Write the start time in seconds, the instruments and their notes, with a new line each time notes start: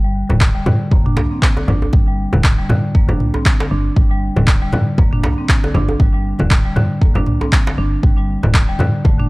Already playing: fm bass G1
0.04 marimba G3
0.29 fm bass D1, marimba D3, mid tom, muted conga, low conga
0.41 kick, clap
0.55 marimba G3
0.66 fm bass G2, marimba D3, mid tom, muted conga, high conga, low conga
0.91 fm bass F1, marimba A#3, kick, high conga
1.06 marimba D4, mid tom
1.16 fm bass C2, djembe slap, muted conga, high conga
1.31 marimba C4
1.42 kick, clap
1.57 marimba D3, muted conga, djembe tone
1.68 fm bass G1, marimba D4, high conga, low conga
1.82 djembe tone
1.93 fm bass G1, marimba G3, kick, muted conga, high conga
2.08 marimba G3
2.33 fm bass D1, marimba D3, mid tom, muted conga, high conga, low conga
2.44 kick, clap
2.58 marimba G3
2.69 fm bass G2, marimba D3, mid tom, muted conga, high conga, low conga
2.95 fm bass F1, marimba A#3, kick
3.09 marimba D4, low conga
3.20 fm bass C2, mid tom, muted conga
3.34 marimba C4, djembe tone
3.46 kick, clap
3.60 marimba D3, muted conga, djembe slap
3.71 fm bass G1, marimba D4
3.96 fm bass G1, marimba G3, kick, muted conga
4.11 marimba G3
4.36 fm bass D1, marimba D3, mid tom, muted conga, low conga
4.47 kick, clap
4.62 marimba G3
4.73 fm bass G2, marimba D3, mid tom, muted conga, high conga, low conga
4.98 fm bass F1, marimba A#3, kick, high conga
5.13 marimba D4, mid tom
5.23 fm bass C2, djembe slap, muted conga, high conga
5.38 marimba C4
5.49 kick, clap
5.63 marimba D3, muted conga, djembe tone
5.74 fm bass G1, marimba D4, high conga, low conga
5.89 djembe tone
6.00 fm bass G1, marimba G3, kick, muted conga, high conga
6.14 marimba G3
6.39 fm bass D1, marimba D3, mid tom, muted conga, high conga, low conga
6.51 kick, clap
6.65 marimba G3
6.76 fm bass G2, marimba D3, mid tom, muted conga, high conga, low conga
7.01 fm bass F1, marimba A#3, kick, djembe tone
7.15 marimba D4, low conga
7.26 fm bass C2, mid tom, muted conga
7.41 marimba C4, djembe tone
7.52 kick, clap
7.67 marimba D3, djembe slap, muted conga
7.78 fm bass G1, marimba D4
8.03 fm bass G1, marimba G3, kick, muted conga
8.18 marimba G3
8.43 fm bass D1, marimba D3, mid tom, muted conga, low conga
8.54 kick, clap
8.69 marimba G3
8.79 fm bass G2, marimba D3, mid tom, muted conga, high conga, low conga
9.05 fm bass F1, marimba A3, kick, high conga
9.20 marimba D4, mid tom